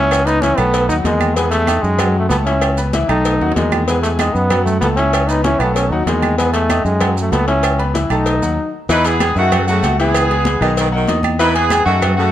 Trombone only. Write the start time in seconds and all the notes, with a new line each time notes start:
Already playing: C#4
0.26 D#4
0.42 C#4
0.57 B3
0.89 D#4
1.05 G#3
1.35 B3
1.51 A3
1.82 G#3
2.19 A3
2.29 B3
2.45 C#4
3.08 D#4
3.56 G#3
3.87 B3
4.03 A3
4.18 G#3
4.33 B3
4.65 A3
4.81 B3
4.96 C#4
5.28 D#4
5.44 C#4
5.59 B3
5.75 C#4
5.90 D#4
6.07 G#3
6.38 B3
6.53 A3
6.85 G#3
7.21 A3
7.32 B3
7.48 C#4
8.11 D#4